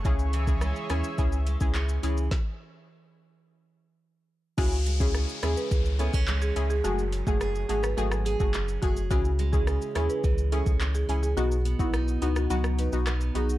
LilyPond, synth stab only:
\new Staff \with { instrumentName = "Synth stab" } { \time 4/4 \key cis \minor \tempo 4 = 106 <cis' e' gis'>8. <cis' e' gis'>16 r8 <cis' e' gis'>16 r16 <cis' e' gis'>16 r8 <cis' e' gis'>8. <cis' e' gis'>8 | r1 | <cis' e' gis'>16 r8 <cis' e' gis'>8. <cis' e' gis'>8 r8 <cis' e' gis'>16 r8. <cis' e' gis'>16 r16 | <a fis' gis'>16 r8 <a fis' gis'>8. <a fis' gis'>8 <a fis' gis'>8. <a fis' gis'>16 r8 <a fis' gis'>16 r16 |
<cis' e' gis'>16 r8 <cis' e' gis'>8. <cis' e' gis'>8 r8 <cis' e' gis'>16 r8. <cis' e' gis'>16 r16 | <b dis' fis'>16 r8 <b dis' fis'>8. <b dis' fis'>8 <b dis' fis'>8. <b dis' fis'>16 r8 <b dis' fis'>16 r16 | }